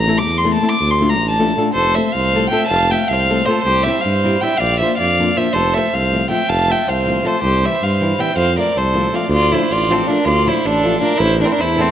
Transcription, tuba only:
Already playing: A1
0.25 E2
0.80 D2
1.19 A1
1.74 F1
2.14 C2
2.69 F1
3.09 C2
3.64 C2
4.05 G2
4.59 A#1
4.99 F2
5.53 F1
5.93 C2
6.48 F1
6.87 C2
7.42 C2
7.81 G2
8.35 F2
8.76 C2
9.30 D2
9.69 A1
10.25 D2
10.64 A1
11.19 A1
11.58 E2

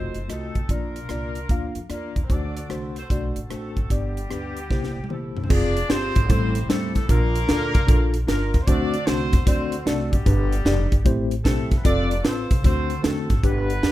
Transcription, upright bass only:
Already playing: F1
0.15 F#1
0.29 C2
0.55 B1
0.69 A#1
1.09 C2
1.49 D2
1.75 F2
1.89 E2
2.16 D#2
2.30 D2
2.69 C2
3.10 B1
3.36 A1
3.50 A1
3.77 G#1
3.90 G1
4.31 D2
4.70 C2
4.96 A1
5.10 A#1
5.36 C2
5.50 F1
5.90 G1
6.16 G#1
6.30 A1
6.70 E2
6.96 B1
7.09 A#1
7.49 D2
7.75 C2
7.89 A#1
8.28 G1
8.54 D#2
8.68 D2
9.07 C2
9.33 E2
9.47 D2
9.86 C2
10.13 G#1
10.26 G1
10.65 F1
10.92 G1
11.06 A1
11.45 B1
11.72 G1
11.85 F1
12.25 A1
12.51 C2
12.64 D2
13.04 E2
13.30 G#1
13.43 G1
13.82 E2

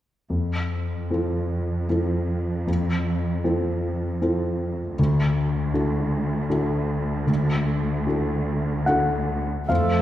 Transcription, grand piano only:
0.30 F2
1.10 C4 F4 A4
1.89 C4 F4 A4
2.67 F2
3.44 C4 F4 A4
4.22 C4 F4 A4
4.99 D2
5.74 D4 F#4 A4
6.50 D4 F#4 A4
7.27 D2
8.06 D4 F#4 A4
8.86 D4 F#4 A4 F#5
9.69 F2 F5

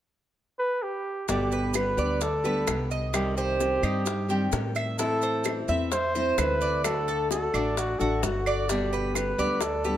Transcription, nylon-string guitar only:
1.28 B2 D3 G3 B3 G4
1.75 D3 G3 B3 G4
1.97 D3 G3 B3 G4
2.21 muted nylon-string guitar stroke
2.44 D3 G3 B3 G4
2.67 D3 G3 B3 G4
3.13 C3 D#3 G3 C4 G4
3.59 D#3 G3 C4 G4
3.83 D#3 G3 C4 G4
4.06 muted nylon-string guitar stroke
4.28 D#3 G3 C4 G4
4.52 D#3 G3 C4 G4
4.98 E3 A3 C4 E4
5.45 E3 A3 C4 E4
5.69 A3 C4 E4
5.92 muted nylon-string guitar stroke
6.15 A3 C4 E4
6.38 E3 E4
6.84 D3 A3 D4 F#4
7.31 D3 A3 D4 F#4
7.54 A3 D4 F#4
7.77 muted nylon-string guitar stroke
7.99 A3 D4 F#4
8.23 D3 A3 D4 F#4
8.69 B2 D3 G3 B3 G4
9.15 D3 G3 B3 G4
9.38 D3 G3 B3 G4
9.62 muted nylon-string guitar stroke
9.85 D3 G3 B3 G4

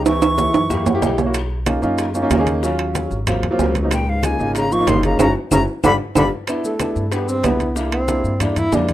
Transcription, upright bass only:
Already playing: C#2
0.54 F#2
1.02 B1
1.82 F#2
2.30 D#2
3.11 G#1
3.43 C2
3.59 C#2
4.39 G#1
4.87 F#1
5.19 F#1
5.51 F#1
5.84 G1
6.16 G1
6.96 G2
7.44 C2
8.24 G2
8.72 F2

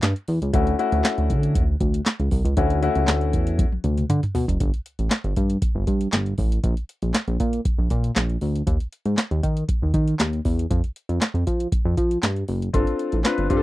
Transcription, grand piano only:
0.53 A3 C#4 E4 F#4
0.79 A3 C#4 E4 F#4
2.57 A3 C#4 E4 F#4
2.82 A3 C#4 E4 F#4
12.73 C4 D4 F4 A4
13.24 C4 D4 F4 B4
13.50 C4 D4 F4 G4
13.57 A4

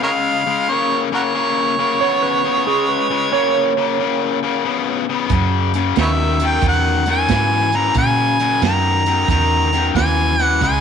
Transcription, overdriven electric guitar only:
0.02 C#3 G#3
0.47 C#3 G#3
0.69 C#3 A#3
1.12 C#3 A#3
1.35 C#3 A#3
1.79 C#3 A#3
2.00 C#3 B3
2.44 C#3 B3
2.67 C#3 G#3
3.10 C#3 G#3
3.32 C#3 A#3
3.77 C#3 A#3
3.99 C#3 A#3
4.43 C#3 A#3
4.65 C#3 B3
5.09 C#3 B3
5.31 F#2 C#3
5.75 F#2 C#3
5.98 F#2 D#3
6.41 F#2 D#3
6.64 F#2 D#3
7.07 F#2 D#3
7.30 F#2 E3
7.74 F#2 E3
7.96 F#2 C#3
8.40 F#2 C#3
8.62 F#2 D#3
9.07 F#2 D#3
9.30 F#2 D#3
9.73 F#2 D#3
9.96 F#2 E3
10.40 F#2 E3
10.62 C#3 G#3

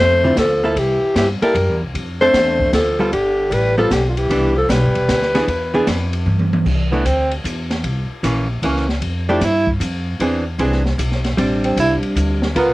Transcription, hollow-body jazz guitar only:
0.24 D3 F3 C4 E4
0.64 A#3 E4 A4
1.42 A#3 E4 A4
2.22 C4 D4 A4
2.99 G3 B3 F4 A4
3.78 G3 B3 F4 A4
4.30 E3 B3 D4
5.35 E3 B3 D4 G#4
5.74 E3 B3 D4 G#4
6.92 E3 A3 D4
8.23 E3 A#3 C#4
8.64 E3 A#3 C#4
9.29 F3 A3 E4 G4
10.21 E3 C4 D4 G#4
10.60 E3 C4 D4 G#4
11.37 G3 C4 D4
12.56 B3 F4 A#4

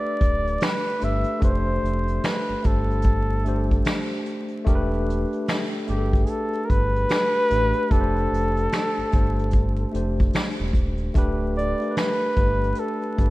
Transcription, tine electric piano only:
Already playing: A3 D4 G4 A4 B4
1.00 A3 D4 G4
1.04 B4
1.39 A3 D4 G4
1.43 B4
1.50 C5
2.63 A3 D4 G4
2.67 C5
3.44 A3 D4 G4
3.49 C5
4.65 A3 D4 G4
4.69 A#4
4.75 B4
5.87 A3 D4 G4
5.91 G#4
5.98 A4
7.50 A3 D4 G4
7.54 B4
7.90 A3 D4 G4
7.94 B4
8.01 C5
9.11 A3 D4 G4
9.15 C5
9.91 A3 D4 G4
9.96 C5
11.14 A3 D4 G4
11.18 B4
11.80 A3 D4 G4
11.85 A#4
11.91 B4
12.36 A3 D4 G4
12.40 B4
13.16 A3 D4 G4
13.21 B4

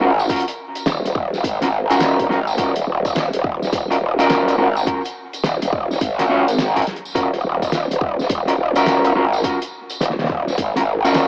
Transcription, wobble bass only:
0.01 G#1
0.87 D#1
1.05 D#1
1.44 G#1
2.01 D#1
2.30 G#1
2.58 D#1
2.87 D#1
3.34 D#1
3.73 D#1
4.30 D#1
4.58 G#1
5.44 D#1
5.62 D#1
6.01 G#1
7.15 D#1
7.44 D#1
7.91 D#1
8.30 D#1
8.86 D#1
9.15 G#1
10.01 D#1
10.20 D#1
10.58 G#1
11.15 D#1

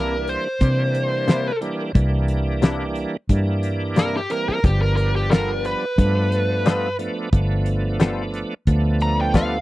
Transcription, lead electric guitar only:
Already playing: A#4
0.29 C5
3.99 A#4
4.17 G4
4.32 A#4
4.49 A#4
4.66 G4
4.82 A#4
4.97 A#4
5.16 G4
5.31 A#4
5.66 B4
9.02 A#5
9.21 G5
9.37 F5

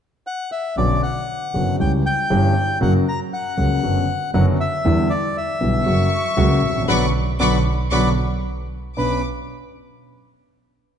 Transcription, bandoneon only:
0.27 F#5
0.52 E5
0.78 D5
1.03 F#5
1.80 G5
2.06 G5
2.82 F#5
3.09 A#5
3.33 F#5
4.34 F#5
4.60 E5
5.10 D5
5.37 E5
6.89 D5 F#5 B5
7.40 D5 F#5 B5
7.92 D5 F#5 B5
8.98 B4

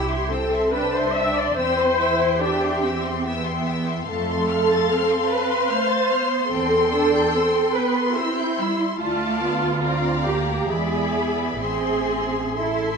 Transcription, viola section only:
Already playing: G4
0.31 A4
0.73 B4
0.96 C5
1.16 E5
1.38 D5
1.59 C5
2.41 G4
4.07 A4
5.30 B4
5.71 C5
6.52 A4
7.74 B4
8.15 E4
9.01 F4
10.27 G4
10.70 G#4
11.62 G#4
12.56 A4

